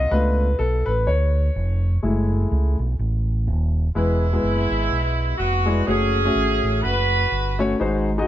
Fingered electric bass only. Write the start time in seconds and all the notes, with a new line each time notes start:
0.11 C#2
0.59 B1
0.87 A1
1.07 D2
1.56 F1
2.03 F#1
2.52 C#2
2.79 B1
2.99 A1
3.47 D#1
3.95 E1
4.43 F#1
4.71 G#1
4.91 B1
5.39 F1
5.88 F#1
6.35 G#1
6.63 A1
6.84 F#1
7.32 G1
7.80 G#1